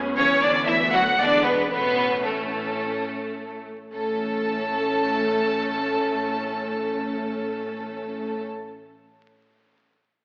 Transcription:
0.00 0.17 F#2 loud
0.00 0.67 B3 medium
0.00 0.68 C#4 loud
0.17 0.68 E2 medium
0.17 0.27 C#3 loud
0.17 0.41 C#4 loud
0.17 0.41 C#5 loud
0.42 0.67 D3 loud
0.42 0.51 D4 loud
0.42 0.68 D5 loud
0.67 1.19 D2 loud
0.67 0.93 E3 loud
0.67 1.19 A3 medium
0.67 1.17 B3 medium
0.67 0.75 E4 loud
0.67 0.93 E5 loud
0.93 1.01 F#3 loud
0.93 1.01 F#4 loud
0.93 1.19 F#5 loud
1.19 1.70 E2 medium
1.19 1.45 D3 loud
1.19 1.71 G#3 medium
1.19 1.70 B3 medium
1.19 1.45 D4 loud
1.19 1.45 D5 loud
1.43 1.69 B2 medium
1.43 1.70 B3 loud
1.43 1.70 B4 loud
1.70 3.70 A1 medium
1.70 2.24 B2 loud
1.70 3.66 A3 medium
1.70 2.25 B3 loud
1.70 3.70 C#4 medium
1.70 2.25 B4 loud
2.25 3.65 A2 medium
2.25 3.63 A3 medium
2.25 3.66 A4 medium
3.93 8.42 A1 medium
3.93 8.41 A3 medium
3.93 8.42 A3 medium
3.93 8.41 C#4 medium
3.93 8.42 A4 loud
3.93 8.43 A5 loud

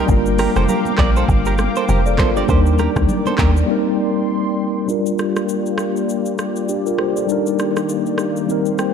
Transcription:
0.00 0.07 A#3 medium
0.00 0.10 C4 medium
0.00 0.10 A#4 medium
0.00 4.85 A#4 medium
0.00 4.85 G5 medium
0.06 0.48 G1 loud
0.06 2.43 G3 medium
0.06 2.44 A#3 medium
0.06 1.85 D4 medium
0.06 1.86 F4 medium
0.06 2.46 F5 medium
0.06 3.65 D6 medium
0.06 kick loud
0.06 shaker medium
0.11 1.86 A#4 medium
0.26 shaker medium
0.38 0.50 G4 medium
0.38 0.49 A#4 medium
0.38 cross-stick medium
0.38 open hi-hat medium
0.38 high conga medium
0.38 shaker medium
0.56 0.67 F1 medium
0.56 0.64 A4 medium
0.56 0.64 C5 medium
0.56 cross-stick medium
0.56 shaker medium
0.68 0.80 G4 medium
0.68 0.79 A#4 medium
0.68 low conga medium
0.68 shaker medium
0.85 high conga medium
0.85 shaker soft
0.98 1.24 A#1 loud
0.98 1.10 A#4 medium
0.98 1.09 D5 medium
0.98 kick loud
0.98 cross-stick loud
0.98 clap loud
0.98 high conga medium
1.16 1.24 A4 medium
1.16 1.24 C5 medium
1.16 shaker soft
1.28 1.68 G1 loud
1.28 kick medium
1.28 low conga medium
1.28 shaker medium
1.45 1.54 G4 medium
1.45 1.54 A#4 medium
1.45 shaker soft
1.58 cross-stick loud
1.58 high conga medium
1.58 shaker medium
1.76 1.84 A4 medium
1.76 1.84 C5 medium
1.76 shaker medium
1.88 2.20 F1 loud
1.88 2.00 G4 medium
1.88 1.99 A#4 medium
1.88 2.06 C5 medium
1.88 2.05 F5 medium
1.88 low conga medium
1.88 shaker medium
2.06 2.18 A4 medium
2.06 2.18 D5 medium
2.06 shaker soft
2.18 2.44 G1 loud
2.18 2.36 F4 medium
2.18 2.30 A4 medium
2.18 2.35 A#4 medium
2.18 2.29 C5 medium
2.18 kick medium
2.18 cross-stick medium
2.18 clap medium
2.18 high conga medium
2.18 low conga medium
2.18 shaker medium
2.36 2.47 D4 medium
2.36 2.65 G4 medium
2.36 2.45 A#4 medium
2.36 2.44 D5 medium
2.36 shaker medium
2.46 2.88 D#2 loud
2.46 3.65 G3 medium
2.46 3.66 A#3 medium
2.46 3.66 D4 medium
2.46 3.67 D#4 medium
2.46 2.60 C5 loud
2.46 4.86 D5 medium
2.46 kick loud
2.46 shaker medium
2.51 2.60 G4 medium
2.51 3.67 A#4 medium
2.66 shaker medium
2.79 2.90 G4 medium
2.79 2.89 A#4 medium
2.79 cross-stick medium
2.79 high conga medium
2.79 shaker medium
2.96 3.07 D2 loud
2.96 kick loud
2.96 cross-stick medium
2.96 shaker medium
3.09 low conga medium
3.09 shaker medium
3.26 3.35 A4 medium
3.26 3.34 C5 medium
3.26 high conga medium
3.26 shaker soft
3.38 3.64 D#2 medium
3.38 3.50 G4 medium
3.38 3.49 A#4 medium
3.38 kick loud
3.38 cross-stick loud
3.38 clap loud
3.38 high conga medium
3.38 shaker medium
3.57 shaker medium
3.66 4.85 G3 medium
3.66 4.86 A#3 medium
3.66 4.86 C4 medium
3.66 4.87 D#4 medium
3.66 4.87 C6 medium
3.71 4.87 A#4 medium
4.86 7.23 G3 medium
4.86 7.26 A#3 medium
4.86 6.65 D4 medium
4.86 7.26 F4 medium
4.86 6.66 F4 medium
4.86 8.45 G4 medium
4.86 8.45 D5 medium
4.86 shaker medium
4.91 6.66 A#4 medium
5.06 shaker medium
5.19 cross-stick medium
5.19 shaker medium
5.36 cross-stick medium
5.36 shaker soft
5.49 shaker medium
5.66 shaker soft
5.78 cross-stick loud
5.78 shaker medium
5.97 shaker soft
6.09 shaker medium
6.26 shaker soft
6.38 cross-stick medium
6.38 shaker soft
6.56 shaker medium
6.69 6.86 D4 medium
6.69 6.85 G4 medium
6.69 shaker medium
6.86 6.98 F4 medium
6.86 6.98 A#4 medium
6.86 shaker soft
6.98 7.16 G4 medium
6.98 7.15 C5 medium
6.98 cross-stick medium
7.16 7.45 A4 medium
7.16 7.45 D5 medium
7.16 shaker medium
7.26 8.94 D#3 medium
7.26 8.45 G3 medium
7.26 8.94 A#3 medium
7.26 8.46 D4 medium
7.26 8.47 D#4 medium
7.26 shaker medium
7.32 8.48 A#4 medium
7.46 shaker medium
7.59 cross-stick medium
7.59 shaker medium
7.76 cross-stick medium
7.76 shaker soft
7.89 shaker medium
8.06 shaker soft
8.18 cross-stick medium
8.18 shaker medium
8.36 shaker soft
8.46 8.94 G3 medium
8.46 8.94 C4 medium
8.46 8.94 D#4 medium
8.46 8.94 G4 medium
8.46 8.94 C5 medium
8.46 shaker medium
8.51 8.94 A#4 medium
8.66 shaker soft
8.78 8.94 G5 medium
8.78 cross-stick medium
8.78 shaker soft

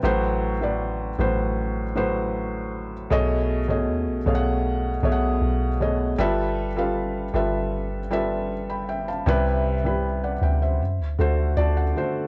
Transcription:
0.03 1.14 A1 loud
0.03 0.51 A2 loud
0.03 0.52 F#3 loud
0.03 0.52 B4 loud
0.03 0.52 C5 loud
0.61 1.09 A2 medium
0.61 1.09 F#3 medium
0.61 1.10 B4 medium
0.61 1.10 D5 medium
1.18 3.07 A1 loud
1.18 1.83 A2 medium
1.18 1.83 F#3 medium
1.18 1.83 B4 medium
1.18 1.84 C5 medium
1.95 2.92 A2 medium
1.95 2.92 F#3 medium
1.95 2.92 B4 medium
1.95 2.93 C5 loud
3.10 3.89 B1 loud
3.10 3.59 B2 loud
3.10 3.59 A3 loud
3.10 3.59 G#4 loud
3.10 3.60 C#5 loud
3.10 3.60 D#5 loud
3.68 4.17 B2 medium
3.68 4.17 A3 medium
3.68 4.17 G#4 medium
3.68 4.17 C#5 medium
3.68 4.18 D#5 medium
3.88 4.09 D#2 loud
4.07 4.25 B1 loud
4.26 5.00 B1 loud
4.26 4.90 B2 medium
4.26 4.91 A3 medium
4.26 4.91 G#4 medium
4.26 4.91 C#5 medium
4.26 4.34 F5 medium
4.35 4.95 F#5 loud
5.03 5.40 B1 loud
5.03 5.67 B2 medium
5.03 5.68 A3 medium
5.03 5.68 G#4 medium
5.03 5.68 C#5 medium
5.03 5.11 E5 medium
5.12 5.72 F#5 medium
5.41 6.15 B1 loud
5.80 6.12 B2 medium
5.80 6.13 A3 medium
5.80 6.13 G#4 medium
5.80 6.13 C#5 medium
5.80 6.13 D#5 medium
6.18 7.30 G1 loud
6.18 6.67 G3 loud
6.18 6.67 F4 loud
6.18 6.67 A4 loud
6.18 6.68 B4 loud
6.18 6.68 E5 loud
6.76 7.24 G3 medium
6.76 7.25 F4 medium
6.76 7.25 A4 medium
6.76 7.25 B4 medium
6.76 7.25 F5 medium
7.34 9.22 G1 loud
7.34 7.98 G3 medium
7.34 7.98 F4 medium
7.34 7.99 A4 medium
7.34 7.99 B4 medium
7.34 7.99 E5 loud
8.10 9.07 G3 medium
8.10 9.07 F4 medium
8.10 9.08 A4 medium
8.10 9.08 B4 medium
8.10 8.50 E5 loud
8.69 8.87 G5 medium
8.69 8.87 B5 medium
8.89 9.07 E5 medium
8.89 9.06 G5 medium
9.08 9.44 F5 medium
9.08 9.44 A5 medium
9.26 10.38 C2 loud
9.26 9.74 C3 loud
9.26 9.75 G3 loud
9.26 9.75 E4 loud
9.26 9.75 B4 loud
9.84 10.32 C3 medium
9.84 10.32 G3 medium
9.84 10.33 E4 medium
9.84 10.04 B4 medium
10.24 10.41 D5 medium
10.24 10.41 F#5 medium
10.41 10.82 D2 loud
10.41 10.61 E5 medium
10.41 10.60 G5 medium
10.62 10.98 C5 medium
10.62 10.98 E5 medium
10.80 11.01 F#2 medium
11.00 11.18 D2 medium
11.19 11.56 D2 loud
11.19 11.83 D3 medium
11.19 11.83 A3 medium
11.19 11.57 F#4 medium
11.19 11.84 C5 loud
11.57 11.94 D2 loud
11.57 11.96 F#4 medium
11.57 12.27 D5 medium
11.57 11.75 A5 medium
11.77 12.27 F#5 medium
11.96 12.27 D3 medium
11.96 12.27 A3 medium
11.96 12.27 F#4 medium
11.96 12.27 C5 medium

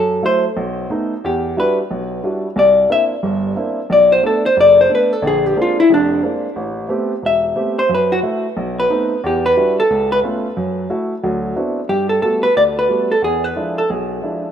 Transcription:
0.00 0.18 F#2 medium
0.00 0.22 A4 medium
0.22 0.45 F#3 medium
0.22 0.45 A3 medium
0.22 0.45 E4 medium
0.22 0.45 C5 medium
0.57 0.85 B1 medium
0.90 1.12 A3 medium
0.90 1.12 B3 medium
0.90 1.12 D#4 medium
1.24 1.52 E2 medium
1.24 1.55 G4 medium
1.57 1.79 G3 medium
1.57 1.79 D4 medium
1.57 1.79 E4 medium
1.57 1.79 F#4 medium
1.57 1.78 B4 medium
1.91 2.19 B1 medium
2.24 2.45 G3 medium
2.24 2.46 D4 medium
2.24 2.46 E4 soft
2.24 2.46 F#4 medium
2.56 2.85 C2 medium
2.56 2.89 D5 medium
2.90 3.12 A#3 medium
2.90 3.12 C4 medium
2.90 3.12 D4 medium
2.90 3.12 E4 medium
2.90 3.04 E5 loud
3.23 3.52 G1 medium
3.23 3.52 G2 medium
3.56 3.78 A#3 medium
3.56 3.78 C4 soft
3.56 3.79 D4 soft
3.56 3.79 E4 medium
3.90 4.18 B1 medium
3.90 4.11 D5 medium
4.12 4.23 C5 medium
4.23 4.45 A3 medium
4.23 4.45 B3 medium
4.23 4.46 D4 medium
4.23 4.45 A4 medium
4.46 4.57 C5 loud
4.57 4.85 F#1 medium
4.57 4.79 D5 loud
4.81 4.91 C5 medium
4.89 5.12 A3 medium
4.89 5.12 B3 soft
4.89 5.12 D4 medium
4.95 5.13 B4 medium
5.13 5.24 A4 loud
5.22 5.51 A#1 medium
5.22 5.51 D3 medium
5.27 5.46 G#4 medium
5.46 5.57 G4 medium
5.56 5.78 G#3 medium
5.56 5.79 A#3 medium
5.56 5.79 C4 medium
5.56 5.79 D4 medium
5.62 5.79 F4 medium
5.80 5.91 E4 medium
5.90 6.18 F1 medium
5.90 6.18 F2 medium
5.94 6.23 D4 medium
6.22 6.45 G#3 medium
6.22 6.45 A#3 soft
6.22 6.45 C4 soft
6.22 6.45 D4 medium
6.56 6.85 A1 medium
6.88 7.11 A3 medium
6.88 7.11 B3 medium
6.88 7.12 C4 medium
6.88 7.12 G4 medium
7.22 7.51 E1 medium
7.22 7.75 E5 medium
7.56 7.78 A3 medium
7.56 7.78 B3 soft
7.56 7.78 C4 medium
7.56 7.79 G4 medium
7.79 7.90 C5 medium
7.89 8.18 F#2 medium
7.95 8.12 B4 medium
8.12 8.19 F#4 medium
8.23 8.45 A3 medium
8.23 8.45 E4 medium
8.23 8.45 F#4 medium
8.57 8.85 B1 medium
8.80 9.21 B4 loud
8.90 9.12 A3 medium
8.90 9.12 B3 medium
8.90 9.12 C4 medium
8.90 9.12 D#4 medium
9.24 9.52 E2 medium
9.24 9.45 G4 medium
9.46 9.76 B4 loud
9.57 9.79 G3 medium
9.57 9.79 D4 medium
9.57 9.79 E4 medium
9.57 9.79 F#4 medium
9.80 10.09 A4 loud
9.90 10.18 C#2 medium
10.12 10.19 B4 loud
10.24 10.45 A3 medium
10.24 10.45 B3 medium
10.24 10.46 C#4 medium
10.24 10.46 F4 medium
10.57 10.85 F#2 medium
10.90 11.12 A3 medium
10.90 11.12 E4 medium
10.90 11.12 F#4 medium
11.23 11.52 D2 medium
11.23 11.52 F#3 medium
11.56 11.78 B3 medium
11.56 11.78 C4 medium
11.56 11.78 D4 medium
11.56 11.78 E4 medium
11.56 11.79 F#4 medium
11.89 12.18 G2 medium
11.89 12.09 G4 medium
12.09 12.21 A4 medium
12.22 12.45 G3 medium
12.22 12.45 A3 medium
12.22 12.45 B3 medium
12.22 12.45 F#4 medium
12.22 12.42 A4 medium
12.43 12.55 B4 loud
12.56 12.85 D2 medium
12.56 12.62 D5 medium
12.79 13.12 B4 medium
12.89 13.11 G3 medium
12.89 13.11 A3 soft
12.89 13.12 B3 soft
12.89 13.12 F#4 medium
13.12 13.24 A4 medium
13.22 13.51 E2 medium
13.22 13.44 G#4 medium
13.44 13.78 B4 medium
13.56 13.78 F3 medium
13.56 13.78 G#3 soft
13.56 13.78 D4 soft
13.56 13.79 E4 medium
13.78 13.91 A4 medium
13.90 14.18 B1 medium
13.90 14.44 G#4 medium
14.22 14.45 F3 soft
14.22 14.45 G#3 soft
14.22 14.45 D4 soft
14.22 14.45 E4 medium

